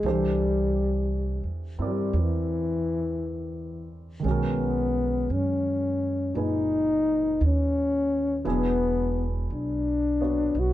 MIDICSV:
0, 0, Header, 1, 4, 480
1, 0, Start_track
1, 0, Tempo, 1050788
1, 15, Time_signature, 4, 2, 24, 8
1, 4902, End_track
2, 0, Start_track
2, 0, Title_t, "Grand piano"
2, 0, Program_c, 0, 0
2, 0, Control_c, 0, 64, 127
2, 21, Control_c, 0, 64, 0
2, 21, Note_on_c, 0, 52, 39
2, 25, Note_on_c, 0, 69, 35
2, 27, Note_on_c, 0, 62, 36
2, 27, Note_on_c, 0, 67, 36
2, 29, Note_on_c, 0, 72, 46
2, 102, Control_c, 0, 64, 127
2, 816, Note_on_c, 0, 60, 36
2, 822, Note_on_c, 0, 64, 31
2, 827, Note_on_c, 0, 70, 36
2, 831, Note_on_c, 0, 74, 41
2, 1916, Note_on_c, 0, 51, 35
2, 1930, Note_on_c, 0, 56, 36
2, 1938, Note_off_c, 0, 60, 0
2, 1940, Note_off_c, 0, 52, 0
2, 1940, Note_off_c, 0, 64, 0
2, 1941, Note_off_c, 0, 69, 0
2, 1941, Control_c, 0, 64, 0
2, 1942, Note_off_c, 0, 62, 0
2, 1942, Note_off_c, 0, 67, 0
2, 1942, Note_on_c, 0, 61, 36
2, 1943, Note_off_c, 0, 70, 0
2, 1944, Note_off_c, 0, 72, 0
2, 1945, Note_off_c, 0, 74, 0
2, 1954, Note_on_c, 0, 66, 35
2, 1968, Note_on_c, 0, 70, 45
2, 2012, Control_c, 0, 64, 127
2, 2897, Note_on_c, 0, 46, 34
2, 2900, Note_on_c, 0, 63, 32
2, 2907, Note_on_c, 0, 68, 34
2, 2909, Note_on_c, 0, 71, 35
2, 3849, Note_off_c, 0, 51, 0
2, 3856, Note_off_c, 0, 56, 0
2, 3858, Note_on_c, 0, 54, 42
2, 3859, Note_off_c, 0, 46, 0
2, 3859, Note_on_c, 0, 59, 38
2, 3860, Note_off_c, 0, 63, 0
2, 3860, Note_off_c, 0, 68, 0
2, 3860, Note_on_c, 0, 62, 38
2, 3861, Note_on_c, 0, 64, 39
2, 3862, Note_off_c, 0, 61, 0
2, 3865, Note_off_c, 0, 71, 0
2, 3866, Control_c, 0, 64, 0
2, 3867, Note_on_c, 0, 68, 47
2, 3868, Note_off_c, 0, 66, 0
2, 3875, Note_off_c, 0, 70, 0
2, 3934, Control_c, 0, 64, 127
2, 4655, Note_off_c, 0, 59, 0
2, 4662, Note_on_c, 0, 59, 37
2, 4667, Note_on_c, 0, 73, 32
2, 4674, Note_on_c, 0, 66, 38
2, 4902, Note_off_c, 0, 54, 0
2, 4902, Note_off_c, 0, 59, 0
2, 4902, Note_off_c, 0, 62, 0
2, 4902, Note_off_c, 0, 64, 0
2, 4902, Note_off_c, 0, 66, 0
2, 4902, Note_off_c, 0, 68, 0
2, 4902, Note_off_c, 0, 73, 0
2, 4902, End_track
3, 0, Start_track
3, 0, Title_t, "Trombone"
3, 0, Program_c, 1, 57
3, 0, Note_on_c, 1, 56, 87
3, 53, Note_on_c, 1, 55, 83
3, 60, Note_off_c, 1, 56, 0
3, 670, Note_off_c, 1, 55, 0
3, 848, Note_on_c, 1, 55, 66
3, 1007, Note_on_c, 1, 52, 72
3, 1014, Note_off_c, 1, 55, 0
3, 1795, Note_off_c, 1, 52, 0
3, 1966, Note_on_c, 1, 59, 83
3, 2435, Note_on_c, 1, 61, 73
3, 2442, Note_off_c, 1, 59, 0
3, 2906, Note_on_c, 1, 62, 52
3, 2912, Note_off_c, 1, 61, 0
3, 2927, Note_on_c, 1, 63, 87
3, 2933, Note_off_c, 1, 62, 0
3, 3393, Note_off_c, 1, 63, 0
3, 3405, Note_on_c, 1, 61, 82
3, 3854, Note_off_c, 1, 61, 0
3, 3882, Note_on_c, 1, 59, 87
3, 4251, Note_off_c, 1, 59, 0
3, 4357, Note_on_c, 1, 62, 74
3, 4839, Note_on_c, 1, 66, 100
3, 4846, Note_off_c, 1, 62, 0
3, 4902, Note_off_c, 1, 66, 0
3, 4902, End_track
4, 0, Start_track
4, 0, Title_t, "Upright bass"
4, 0, Program_c, 2, 32
4, 13, Note_on_c, 2, 36, 74
4, 635, Note_off_c, 2, 36, 0
4, 656, Note_on_c, 2, 40, 44
4, 804, Note_off_c, 2, 40, 0
4, 817, Note_on_c, 2, 43, 52
4, 964, Note_off_c, 2, 43, 0
4, 975, Note_on_c, 2, 40, 70
4, 1918, Note_off_c, 2, 40, 0
4, 1937, Note_on_c, 2, 35, 71
4, 2399, Note_off_c, 2, 35, 0
4, 2420, Note_on_c, 2, 42, 60
4, 2882, Note_off_c, 2, 42, 0
4, 2901, Note_on_c, 2, 30, 64
4, 3362, Note_off_c, 2, 30, 0
4, 3384, Note_on_c, 2, 39, 69
4, 3843, Note_off_c, 2, 39, 0
4, 3861, Note_on_c, 2, 28, 68
4, 4322, Note_off_c, 2, 28, 0
4, 4340, Note_on_c, 2, 35, 54
4, 4800, Note_off_c, 2, 35, 0
4, 4818, Note_on_c, 2, 35, 64
4, 4902, Note_off_c, 2, 35, 0
4, 4902, End_track
0, 0, End_of_file